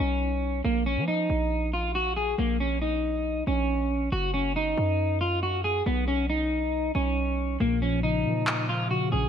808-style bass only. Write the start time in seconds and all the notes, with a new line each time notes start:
0.00 B1
0.64 A#1
0.97 F3
1.30 A#1
2.38 A#1
3.47 A#1
4.12 F#1
4.78 F#2
5.86 B1
6.95 B1
7.60 A#1
8.25 F3
9.12 A#1